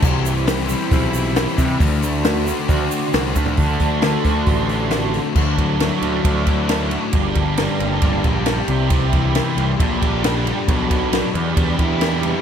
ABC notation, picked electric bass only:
X:1
M:4/4
L:1/8
Q:1/4=135
K:Dmix
V:1 name="Picked electric bass" clef=bass
C,,4 B,,,3 C, | D,,4 D,, z C,, D,, | D,, D,,2 D,, A,,,4 | D,,3 D,, D,,4 |
G,,,3 G,,, G,,, _B,,,2 C,,- | C,,3 C,, _B,,,4 | B,,,3 E,, E,, E,,3 |]